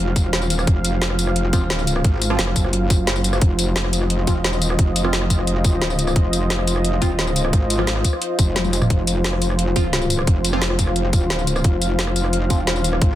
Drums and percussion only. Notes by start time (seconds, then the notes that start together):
0.16 kick, closed hi-hat, tambourine
0.33 snare, closed hi-hat
0.42 tambourine
0.50 closed hi-hat, tambourine
0.59 cross-stick, tambourine
0.67 kick, closed hi-hat
0.84 closed hi-hat, tambourine
1.02 snare, closed hi-hat
1.10 cross-stick
1.19 closed hi-hat, tambourine
1.27 cross-stick
1.36 closed hi-hat
1.53 kick, closed hi-hat, tambourine
1.70 snare, closed hi-hat
1.79 tambourine
1.87 closed hi-hat, tambourine
1.96 cross-stick
2.04 kick, closed hi-hat
2.22 closed hi-hat, tambourine
2.30 cross-stick
2.39 snare, closed hi-hat
2.47 cross-stick
2.56 kick, closed hi-hat, tambourine
2.64 cross-stick
2.73 closed hi-hat
2.90 kick, closed hi-hat, tambourine
3.07 snare, closed hi-hat
3.16 tambourine
3.24 closed hi-hat, tambourine
3.33 cross-stick, tambourine
3.41 kick, closed hi-hat
3.59 closed hi-hat, tambourine
3.76 snare, closed hi-hat
3.84 cross-stick
3.93 closed hi-hat, tambourine
4.02 cross-stick
4.10 closed hi-hat
4.27 kick, closed hi-hat, tambourine
4.44 snare, closed hi-hat
4.53 tambourine
4.62 closed hi-hat, tambourine
4.70 cross-stick
4.79 kick, closed hi-hat
4.96 closed hi-hat, tambourine
5.04 cross-stick
5.13 snare, closed hi-hat
5.22 cross-stick
5.30 kick, closed hi-hat, tambourine
5.39 cross-stick
5.47 closed hi-hat
5.64 kick, closed hi-hat, tambourine
5.82 snare, closed hi-hat
5.90 tambourine
5.99 closed hi-hat, tambourine
6.07 cross-stick, tambourine
6.16 kick, closed hi-hat
6.33 closed hi-hat, tambourine
6.50 snare, closed hi-hat
6.59 cross-stick
6.67 closed hi-hat, tambourine
6.76 cross-stick
6.85 closed hi-hat
7.02 kick, closed hi-hat, tambourine
7.19 snare, closed hi-hat
7.27 tambourine
7.36 closed hi-hat, tambourine
7.45 cross-stick
7.53 kick, closed hi-hat
7.70 closed hi-hat, tambourine
7.79 cross-stick
7.87 snare, closed hi-hat
7.96 cross-stick
8.04 kick, closed hi-hat, tambourine
8.13 cross-stick
8.22 closed hi-hat
8.39 kick, closed hi-hat, tambourine
8.56 snare, closed hi-hat, high tom
8.65 high tom, tambourine
8.73 closed hi-hat, tambourine
8.82 cross-stick, mid tom, tambourine
8.90 kick, closed hi-hat
9.07 closed hi-hat, tambourine
9.24 snare, closed hi-hat
9.33 cross-stick
9.42 closed hi-hat, tambourine
9.50 cross-stick
9.59 closed hi-hat
9.76 kick, closed hi-hat, tambourine
9.93 snare, closed hi-hat
10.02 tambourine
10.10 closed hi-hat, tambourine
10.19 cross-stick
10.27 kick, closed hi-hat
10.45 closed hi-hat, tambourine
10.53 cross-stick
10.62 snare, closed hi-hat
10.70 cross-stick
10.79 kick, closed hi-hat, tambourine
10.87 cross-stick
10.96 closed hi-hat
11.13 kick, closed hi-hat, tambourine
11.30 snare, closed hi-hat
11.39 tambourine
11.47 closed hi-hat, tambourine
11.56 cross-stick, tambourine
11.64 kick, closed hi-hat
11.82 closed hi-hat, tambourine
11.99 snare, closed hi-hat
12.07 cross-stick
12.16 closed hi-hat, tambourine
12.24 cross-stick
12.33 closed hi-hat
12.50 kick, closed hi-hat, tambourine
12.67 snare, closed hi-hat
12.76 tambourine
12.84 closed hi-hat, tambourine
12.93 cross-stick
13.02 kick, closed hi-hat